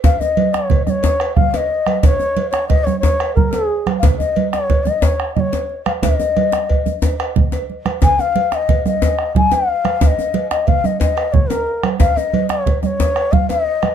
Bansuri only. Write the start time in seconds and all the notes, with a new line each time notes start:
0.04 F5
0.19 D#5
0.53 C#5
0.85 D#5
0.90 C#5
1.35 F5
1.51 F5
1.56 D#5
2.01 C#5 D#5
2.50 C#5
2.68 D#5
2.84 C#5
2.99 C#5
3.35 A#4
3.51 G#4
3.99 F5
4.18 D#5
4.52 C#5
4.84 D#5
5.02 C#5
5.35 D#5
5.40 C#5
5.86 F5
6.02 D#5
8.03 G#5
8.20 F5
8.55 D#5
8.87 D#5
9.37 G#5
9.54 F5
10.03 F5
10.07 D#5
10.51 D#5
10.67 F5
10.85 D#5
11.01 D#5
11.33 C#5
11.49 A#4
12.00 F5
12.17 D#5
12.50 C#5
12.83 C#5 D#5
13.32 F5
13.50 D#5